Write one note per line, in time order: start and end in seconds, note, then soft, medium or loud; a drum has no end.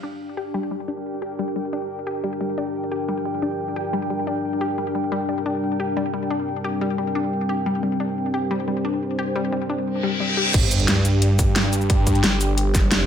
0.00 10.50 G3 medium
0.00 5.08 D4 medium
0.00 10.54 D4 medium
0.00 0.10 D4 medium
0.00 2.40 G4 medium
0.00 10.54 G4 medium
0.37 0.47 G4 medium
0.46 10.54 A#4 medium
0.54 0.61 G3 loud
0.54 10.54 G5 medium
0.71 0.81 G3 medium
0.88 0.95 D4 medium
1.22 1.32 G4 medium
1.39 1.46 G3 loud
1.56 1.66 G3 medium
1.73 1.79 D4 medium
2.07 2.17 G4 medium
2.24 2.30 G3 medium
2.41 2.51 G3 medium
2.41 5.11 F4 medium
2.58 2.64 D4 medium
2.92 3.01 G4 medium
3.08 3.15 G3 loud
3.25 3.35 G3 medium
3.42 3.49 D4 medium
3.76 3.86 G4 medium
3.93 4.00 G3 loud
4.10 4.20 G3 medium
4.27 4.34 D4 medium
4.61 4.68 G4 medium
4.78 4.82 G3 medium
4.95 4.99 G3 medium
5.12 5.18 G3 loud
5.12 10.50 C4 medium
5.12 7.82 G4 medium
5.29 5.39 G3 medium
5.46 5.52 D4 medium
5.80 5.90 G4 medium
5.97 6.03 G3 loud
6.14 6.23 G3 medium
6.31 6.37 D4 medium
6.64 6.74 G4 medium
6.81 6.88 G3 loud
6.98 7.08 G3 medium
7.15 7.22 D4 medium
7.49 7.59 G4 medium
7.66 7.73 G3 loud
7.83 7.93 G3 medium
7.83 10.53 C5 medium
8.00 8.07 D4 medium
8.34 8.44 G4 medium
8.51 8.57 G3 loud
8.68 8.78 G3 medium
8.85 8.91 D4 medium
9.19 9.28 G4 medium
9.36 9.42 G3 loud
9.52 9.62 G3 medium
9.69 9.76 D4 medium
9.86 reverse cymbal medium
10.03 10.13 G3 loud
10.20 10.30 G3 medium
10.37 10.47 G4 medium
10.54 10.87 G1 loud
10.54 13.06 G3 medium
10.54 13.06 D4 medium
10.54 13.06 G4 loud
10.54 kick loud
10.54 closed hi-hat loud
10.54 crash loud
10.54 sub drop medium
10.71 closed hi-hat medium
10.71 shaker medium
10.80 closed hi-hat soft
10.88 12.22 G2 loud
10.88 snare loud
10.88 closed hi-hat loud
10.97 snare soft
11.05 closed hi-hat medium
11.05 shaker medium
11.22 closed hi-hat loud
11.39 kick loud
11.39 closed hi-hat medium
11.39 shaker medium
11.56 snare loud
11.56 closed hi-hat loud
11.73 closed hi-hat medium
11.73 shaker medium
11.81 shaker soft
11.90 kick loud
11.90 closed hi-hat loud
12.07 kick medium
12.07 closed hi-hat medium
12.07 shaker medium
12.15 closed hi-hat soft
12.24 12.83 G1 medium
12.24 snare loud
12.24 closed hi-hat loud
12.41 closed hi-hat medium
12.41 shaker medium
12.58 closed hi-hat loud
12.75 kick loud
12.75 snare soft
12.75 closed hi-hat medium
12.75 shaker medium
12.83 13.06 F#1 medium
12.92 snare loud
12.92 closed hi-hat loud